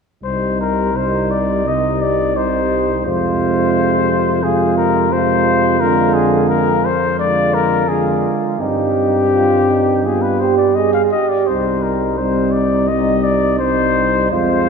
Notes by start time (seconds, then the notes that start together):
0.23 C2 C3 G3 D#4 C5
0.61 A#4
0.94 C3 G3 D#4 C5
1.31 D5
1.65 C3 G3 D#4 D#5
2.02 D5
2.36 C3 G3 D#4 C5
3.05 F2 C3 G#3 F4 C5
4.43 C3 G#3 F4 G#4
4.78 A#4
5.12 C3 G#3 F4 C5
5.80 D3 G#3 F4 A#4
6.14 G#4
6.50 A#4
6.85 C5
7.18 D3 G#3 F4 D5
7.54 A#4
7.88 D3 G#3 F4 G#4
8.59 G2 G3 C4 D#4 G4
9.34 F4
9.70 D#4
10.04 G3 B3 F4 G#4
10.22 B4
10.40 G4 C5
10.58 D5
10.75 G#4 D#5
10.94 F5
11.12 G4 D#5
11.29 D5
11.47 C2 G3 C4 D#4 C5
11.83 A#4
12.18 G3 C4 D#4 C5
12.52 D5
12.88 G3 C4 D#4 D#5
13.24 D5
13.59 G3 C4 D#4 C5
14.31 F2 G#3 C4 F4 C5